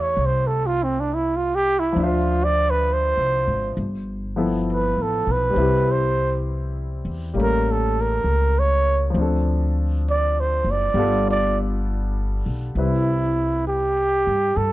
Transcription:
0.00 0.14 E2 medium
0.00 1.97 A3 soft
0.00 1.97 E4 soft
0.00 1.96 F4 medium
0.00 1.97 G4 medium
0.00 0.27 C#5 medium
0.17 1.93 C2 medium
0.26 0.49 C5 medium
0.47 0.68 A4 medium
0.67 0.85 F4 medium
0.84 1.02 C4 medium
1.00 1.16 D4 medium
1.14 1.38 E4 medium
1.36 1.57 F4 medium
1.55 1.81 G4 medium
1.79 2.05 E4 medium
1.92 3.12 D2 medium
1.92 3.74 F3 medium
1.97 3.76 D4 soft
1.97 3.78 E5 soft
2.03 2.46 F4 medium
2.03 3.80 C5 medium
2.44 2.72 D5 medium
2.70 2.95 B4 medium
2.93 3.80 C5 medium
3.17 3.45 C2 medium
3.47 3.75 G#1 medium
3.77 4.92 G1 medium
4.36 5.55 F3 medium
4.36 5.56 B3 soft
4.36 5.56 E4 soft
4.36 5.56 A4 medium
4.73 5.04 B4 medium
4.97 5.24 A1 soft
5.02 5.33 A4 medium
5.27 5.54 B1 medium
5.31 5.93 B4 medium
5.50 7.32 G3 soft
5.50 7.34 C4 soft
5.56 7.01 C2 medium
5.56 7.36 E4 soft
5.62 7.38 G4 medium
5.92 6.38 C5 medium
7.05 7.32 E2 medium
7.34 8.20 A1 medium
7.34 9.13 G3 soft
7.34 9.14 A#3 soft
7.34 9.15 C#4 soft
7.38 9.16 A3 soft
7.38 7.73 A#4 medium
7.71 8.02 A4 medium
8.01 8.61 A#4 medium
8.24 9.10 C#2 medium
8.59 9.06 C#5 medium
9.10 10.92 F3 soft
9.14 10.60 D2 medium
9.14 10.94 C4 soft
9.14 10.96 D4 soft
9.22 10.97 A4 medium
10.10 10.42 D5 medium
10.40 10.73 C5 medium
10.64 10.92 F#1 medium
10.71 11.28 D5 medium
10.94 12.41 G1 medium
10.94 12.76 G3 medium
10.94 12.76 B3 soft
10.94 12.77 F4 medium
10.99 12.78 A4 medium
11.30 11.59 D5 medium
12.46 12.74 B1 medium
12.75 14.22 C2 medium
12.75 14.72 G3 soft
12.75 14.72 C4 soft
12.75 13.63 E4 medium
12.75 14.72 E4 soft
12.75 14.72 B4 soft
13.68 14.58 G4 medium
14.27 14.55 G2 medium
14.56 14.72 G2 medium
14.56 14.72 A4 medium

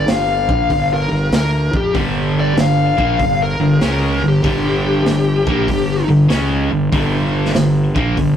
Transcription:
0.08 0.46 G1 medium
0.08 0.90 F5 medium
0.08 snare loud
0.08 open hi-hat medium
0.48 0.69 A#1 medium
0.48 kick medium
0.70 1.08 G1 medium
0.70 kick medium
0.70 open hi-hat soft
0.94 1.33 A#4 medium
1.11 1.31 G1 medium
1.31 1.70 D2 medium
1.31 snare loud
1.31 open hi-hat soft
1.36 1.75 A#4 medium
1.74 1.94 F2 medium
1.74 1.96 G4 medium
1.74 kick medium
1.94 2.53 G1 medium
1.94 2.56 G2 medium
1.94 2.57 D3 loud
1.94 2.57 G3 loud
1.94 kick medium
1.94 open hi-hat soft
2.40 2.59 D5 medium
2.57 2.95 G1 medium
2.57 2.90 G2 medium
2.57 2.90 D3 medium
2.57 3.39 F5 medium
2.57 snare loud
2.57 open hi-hat soft
2.97 3.18 A#1 medium
2.97 3.19 A#2 medium
2.97 3.19 F3 medium
2.97 3.19 A#3 medium
2.97 kick medium
3.19 3.57 G1 medium
3.19 3.52 G2 medium
3.19 3.53 D3 medium
3.19 kick medium
3.19 open hi-hat soft
3.43 3.82 A#4 medium
3.59 3.80 G1 medium
3.59 3.77 G2 medium
3.59 3.78 D3 medium
3.81 4.20 C#2 medium
3.81 4.21 C#3 medium
3.81 4.22 G#3 medium
3.81 4.22 C#4 medium
3.81 4.23 A#4 medium
3.81 snare medium
3.81 open hi-hat soft
4.21 4.42 G1 medium
4.21 4.39 G2 medium
4.21 4.39 D3 medium
4.28 6.09 G4 medium
4.43 5.02 G1 medium
4.43 5.05 G2 medium
4.43 5.05 D3 loud
4.43 5.06 G3 medium
4.43 kick medium
4.43 open hi-hat soft
5.06 5.44 G1 medium
5.06 5.39 G2 medium
5.06 5.40 D3 medium
5.06 snare loud
5.06 open hi-hat soft
5.47 5.67 A#1 medium
5.47 5.68 A#2 medium
5.47 5.68 F3 medium
5.47 5.68 A#3 loud
5.47 kick loud
5.68 6.06 G1 medium
5.68 6.01 G2 medium
5.68 6.01 D3 medium
5.68 kick medium
5.68 open hi-hat soft
6.08 6.29 G1 medium
6.08 6.26 G2 medium
6.08 6.26 D3 medium
6.28 6.68 C#2 medium
6.28 6.69 C#3 medium
6.28 6.70 G#3 medium
6.28 6.70 C#4 loud
6.28 snare loud
6.28 open hi-hat soft
6.71 6.91 G1 medium
6.71 6.89 G2 medium
6.71 6.89 D3 medium
6.92 7.51 G1 medium
6.92 7.54 G2 medium
6.92 7.54 D3 loud
6.92 7.55 G3 loud
6.92 kick medium
6.92 open hi-hat soft
7.45 snare soft
7.54 7.93 G1 medium
7.54 7.88 G2 medium
7.54 7.88 D3 medium
7.54 snare loud
7.54 open hi-hat soft
7.95 8.16 A#1 medium
7.95 8.16 A#2 medium
7.95 8.17 F3 medium
7.95 8.17 A#3 medium
7.95 kick medium
8.17 8.37 G1 medium
8.17 8.37 G2 medium
8.17 8.37 D3 medium
8.17 kick medium
8.17 open hi-hat soft

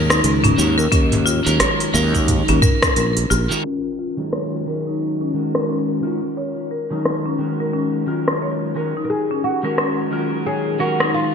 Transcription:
0.00 0.19 D#2 medium
0.00 0.54 D#3 medium
0.00 0.55 F#3 medium
0.00 0.54 G#3 medium
0.00 0.55 C#4 medium
0.00 0.55 A#4 loud
0.10 0.42 D#4 medium
0.10 cross-stick medium
0.10 open hi-hat soft
0.10 djembe slap soft
0.10 shaker soft
0.24 0.52 C#2 medium
0.24 open hi-hat medium
0.24 shaker soft
0.44 0.57 C#4 medium
0.44 mid tom medium
0.44 open hi-hat soft
0.44 djembe tone medium
0.56 0.86 D#2 medium
0.56 0.74 D#3 medium
0.56 0.74 G#3 medium
0.56 0.74 C#4 medium
0.56 0.74 F#4 medium
0.56 0.75 A#4 medium
0.56 shaker medium
0.78 0.90 A#4 medium
0.78 djembe slap soft
0.78 shaker soft
0.92 1.39 D#2 loud
0.92 1.11 C#4 medium
0.92 kick loud
0.92 open hi-hat medium
0.92 shaker soft
1.12 mid tom medium
1.12 open hi-hat soft
1.12 djembe slap medium
1.26 1.45 F4 medium
1.26 shaker medium
1.45 1.57 D#2 medium
1.45 1.90 D#3 medium
1.45 1.91 F#3 medium
1.45 1.90 G#3 medium
1.45 1.91 C#4 medium
1.45 1.91 A#4 medium
1.45 open hi-hat soft
1.45 djembe slap soft
1.45 shaker soft
1.60 1.79 C#5 medium
1.60 cross-stick medium
1.60 open hi-hat medium
1.60 djembe bass medium
1.60 shaker soft
1.80 open hi-hat soft
1.93 2.41 D#2 loud
1.93 2.58 D#3 medium
1.93 2.59 F#3 medium
1.93 2.59 G#3 medium
1.93 2.59 C#4 medium
1.93 2.12 A#4 medium
1.93 2.59 A#4 loud
1.93 djembe slap soft
1.93 djembe tone medium
1.93 shaker medium
2.14 2.47 D#4 medium
2.14 kick soft
2.14 open hi-hat soft
2.14 djembe tone soft
2.14 shaker soft
2.28 kick medium
2.28 mid tom medium
2.28 open hi-hat medium
2.28 shaker soft
2.48 2.59 D#2 medium
2.48 2.62 C#4 medium
2.48 open hi-hat soft
2.48 djembe tone medium
2.48 djembe bass medium
2.62 2.74 A#4 loud
2.62 kick medium
2.62 mid tom medium
2.62 shaker medium
2.83 2.95 A#4 medium
2.83 kick loud
2.83 cross-stick medium
2.83 open hi-hat soft
2.83 shaker soft
2.96 3.24 A#1 medium
2.96 3.16 A#4 medium
2.96 open hi-hat medium
2.96 shaker soft
3.17 open hi-hat soft
3.17 djembe tone medium
3.30 3.46 A#1 medium
3.30 3.49 F4 medium
3.30 djembe slap soft
3.30 djembe bass medium
3.30 shaker medium
3.49 3.62 D#3 medium
3.49 3.63 G#3 medium
3.49 3.63 C#4 medium
3.49 3.63 F#4 medium
3.49 3.63 A#4 medium
3.49 djembe slap soft
3.49 shaker soft
3.64 3.84 C#4 medium
3.99 4.18 F4 medium
4.17 4.63 D#3 medium
4.17 4.63 F#3 medium
4.17 4.63 G#3 medium
4.17 4.63 C#4 medium
4.17 4.64 A#4 medium
4.33 4.52 C#5 medium
4.33 cross-stick medium
4.66 5.31 D#3 medium
4.66 5.32 F#3 medium
4.66 5.31 G#3 medium
4.66 5.32 C#4 medium
4.66 4.85 A#4 medium
4.66 5.32 A#4 medium
4.87 5.19 D#4 medium
5.21 5.34 C#4 medium
5.34 5.99 D#3 medium
5.34 6.00 G#3 medium
5.34 6.00 C#4 medium
5.34 6.00 F#4 medium
5.34 6.00 A#4 medium
5.55 5.68 A#4 medium
5.55 cross-stick medium
5.69 5.89 C#4 medium
6.02 6.19 D#3 medium
6.02 6.19 G#3 medium
6.02 6.20 C#4 medium
6.02 6.23 F4 medium
6.02 6.20 F#4 medium
6.02 6.20 A#4 medium
6.37 6.57 C#5 medium
6.71 6.90 A#4 medium
6.90 7.36 D#3 medium
6.90 7.37 F#3 medium
6.90 7.36 G#3 medium
6.90 7.36 C#4 medium
6.90 7.24 D#4 medium
6.90 7.37 A#4 medium
7.05 cross-stick medium
7.26 7.39 C#4 medium
7.38 8.04 D#3 medium
7.38 8.04 G#3 medium
7.38 8.04 C#4 medium
7.38 8.05 F#4 medium
7.38 8.05 A#4 medium
7.60 7.73 A#4 medium
7.74 7.93 C#4 medium
8.06 8.72 D#3 medium
8.06 8.73 F#3 medium
8.06 8.72 G#3 medium
8.06 8.73 C#4 medium
8.06 8.27 F4 medium
8.06 8.73 A#4 medium
8.28 cross-stick medium
8.42 8.61 C#5 medium
8.75 8.92 D#3 medium
8.75 8.92 G#3 medium
8.75 8.93 C#4 medium
8.75 8.93 F#4 medium
8.75 8.95 A#4 medium
8.75 8.93 A#4 medium
8.97 9.29 D#4 medium
9.05 9.09 A#4 medium
9.10 9.44 G#4 loud
9.31 9.44 C#4 medium
9.44 10.46 F#4 medium
9.63 10.08 D#3 medium
9.63 10.09 G#3 medium
9.63 10.09 C#4 medium
9.63 10.09 F#4 medium
9.63 9.77 A#4 medium
9.63 10.09 A#4 medium
9.78 9.98 C#4 medium
9.78 cross-stick medium
10.11 10.76 D#3 medium
10.11 10.77 F#3 medium
10.11 10.77 G#3 medium
10.11 10.77 C#4 medium
10.11 10.32 F4 medium
10.11 10.77 A#4 medium
10.46 10.80 G#4 medium
10.46 10.66 C#5 medium
10.79 11.35 D#3 medium
10.79 11.35 F#3 medium
10.79 11.35 G#3 medium
10.79 11.35 C#4 medium
10.79 11.14 F#4 medium
10.79 10.99 A#4 medium
10.79 11.35 A#4 medium
11.00 11.33 D#4 medium
11.00 cross-stick medium
11.14 11.35 F4 medium

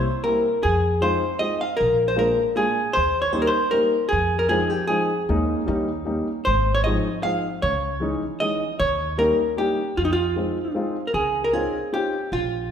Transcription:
0.00 0.23 C5 loud
0.24 0.44 G3 medium
0.24 0.44 A#3 medium
0.24 0.45 C4 medium
0.24 0.45 E4 medium
0.24 0.64 A#4 medium
0.63 1.15 F2 medium
0.63 1.03 G#4 loud
1.01 1.21 G#3 medium
1.01 1.22 C4 medium
1.01 1.22 D#4 medium
1.01 1.22 F4 medium
1.01 1.39 C5 medium
1.39 1.61 G#3 medium
1.39 1.61 C4 soft
1.39 1.61 D#4 soft
1.39 1.61 F4 medium
1.39 1.61 D#5 medium
1.61 1.79 F5 medium
1.77 2.31 A#1 medium
1.77 2.06 A#4 loud
2.08 2.17 C5 medium
2.16 2.37 G#3 medium
2.16 2.37 A#3 medium
2.16 2.38 D4 medium
2.16 2.38 F4 medium
2.16 2.56 A#4 medium
2.55 2.76 G#3 medium
2.55 2.77 A#3 medium
2.55 2.77 D4 soft
2.55 2.77 F4 medium
2.55 2.97 G#4 medium
2.93 3.47 D#2 medium
2.93 3.21 C5 loud
3.22 3.33 C#5 medium
3.33 3.53 G3 medium
3.33 3.53 A#3 medium
3.33 3.54 C#4 medium
3.33 3.54 D#4 medium
3.33 3.41 C5 loud
3.42 3.49 A#4 medium
3.47 3.73 C5 medium
3.71 3.92 G3 medium
3.71 3.93 A#3 medium
3.71 3.93 C#4 soft
3.71 3.93 D#4 medium
3.71 4.08 A#4 medium
4.09 4.63 F2 loud
4.09 4.38 G#4 loud
4.39 4.49 A#4 medium
4.49 4.70 F3 medium
4.49 4.70 G#3 medium
4.49 4.71 C4 medium
4.49 4.71 D#4 medium
4.49 4.70 G#4 medium
4.70 4.87 G4 medium
4.87 5.09 F3 medium
4.87 5.09 G#3 medium
4.87 5.09 C4 medium
4.87 5.10 D#4 medium
4.87 6.22 G#4 medium
5.29 5.54 D#2 medium
5.29 5.60 G#3 medium
5.29 5.61 A#3 medium
5.29 5.61 C#4 medium
5.29 5.61 D#4 medium
5.66 6.19 D#2 medium
5.66 5.87 G3 medium
5.66 5.88 A#3 medium
5.66 5.88 C#4 medium
5.66 5.88 D#4 medium
6.05 6.26 G3 medium
6.05 6.27 A#3 medium
6.05 6.27 C#4 medium
6.05 6.27 D#4 medium
6.45 6.98 G#1 medium
6.45 6.74 C5 loud
6.75 6.83 C#5 medium
6.84 7.06 F3 medium
6.84 7.06 G#3 medium
6.84 7.06 C4 medium
6.84 7.06 D#4 medium
6.84 7.23 D#5 medium
7.23 7.44 F3 medium
7.23 7.44 G#3 medium
7.23 7.45 C4 medium
7.23 7.45 D#4 medium
7.23 7.62 F5 medium
7.62 8.14 C#2 medium
7.62 8.18 C#5 medium
8.00 8.21 E3 medium
8.00 8.21 G#3 medium
8.00 8.22 C#4 medium
8.00 8.22 D#4 medium
8.40 8.61 E3 medium
8.40 8.61 G#3 medium
8.40 8.61 C#4 medium
8.40 8.61 D#4 medium
8.40 8.77 D#5 medium
8.79 9.31 D#2 loud
8.79 9.20 C#5 loud
9.18 9.38 G3 medium
9.18 9.39 A#3 medium
9.18 9.39 C#4 medium
9.18 9.39 D#4 medium
9.18 9.58 A#4 medium
9.57 9.77 G3 medium
9.57 9.78 A#3 medium
9.57 9.78 C#4 medium
9.57 9.78 D#4 medium
9.57 9.98 G4 medium
9.97 10.48 F2 medium
9.97 10.04 F4 medium
10.05 10.12 D#4 medium
10.13 10.72 F4 medium
10.36 10.56 G#3 medium
10.36 10.57 C4 medium
10.36 10.57 D#4 medium
10.36 10.57 F4 medium
10.74 10.95 G#3 medium
10.74 10.95 C4 medium
10.74 10.95 D#4 medium
10.74 10.96 F4 medium
11.07 11.14 A#4 medium
11.14 11.65 C#2 medium
11.14 11.44 G#4 medium
11.44 11.53 A#4 medium
11.53 11.73 C4 medium
11.53 11.73 C#4 medium
11.53 11.74 D#4 medium
11.53 11.74 F4 medium
11.53 11.93 G#4 medium
11.92 12.13 C4 medium
11.92 12.13 C#4 medium
11.92 12.13 D#4 medium
11.92 12.13 F4 medium
11.92 12.30 G4 medium
12.32 12.71 A#1 medium
12.32 12.71 F4 medium

